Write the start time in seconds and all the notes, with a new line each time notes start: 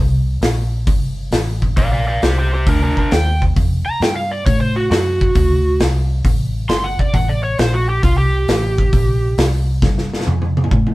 Already playing: C2
0.41 A#1, snare, open hi-hat
0.87 G1, kick, open hi-hat
1.31 A1, snare, open hi-hat
1.62 kick
1.77 A#1 D5 F5, kick, open hi-hat
1.92 D5 F5
2.08 D5 F5
2.22 C2 G4 C5, snare, open hi-hat
2.39 G4 C5
2.54 G4 C5
2.67 D2 D4 A#4, kick, open hi-hat
2.83 D4 A#4
2.97 D4 A#4, muted fingered electric bass stroke, kick
3.11 D#2 G5, snare, open hi-hat
3.42 kick
3.56 F2, kick, open hi-hat
3.86 A#5, muted fingered electric bass stroke
4.00 G2 G5, snare, open hi-hat
4.16 F5
4.31 D5
4.46 A2 C#5, kick, open hi-hat
4.61 C5
4.76 F#4
4.90 F#2 F#4, snare, open hi-hat
5.21 kick
5.35 D2, kick, open hi-hat
5.80 C2, snare, open hi-hat
6.25 A1, kick, open hi-hat
6.69 G1 C6, snare, open hi-hat
6.84 F#5
6.99 D5, kick
7.14 A1 F#5, kick, open hi-hat
7.29 D5
7.44 C#5
7.59 A#1 C5, snare, open hi-hat
7.74 F#4
7.89 G4
8.03 C2 F4, kick, open hi-hat
8.18 G4
8.48 A1, snare, open hi-hat
8.78 kick
8.93 A#1, kick, open hi-hat
9.38 C2, snare, open hi-hat
9.82 G2, kick, snare
9.98 snare
10.13 snare
10.21 snare
10.27 F2, high tom
10.42 high tom
10.57 high tom
10.64 mid tom
10.71 A2, kick, mid tom
10.87 mid tom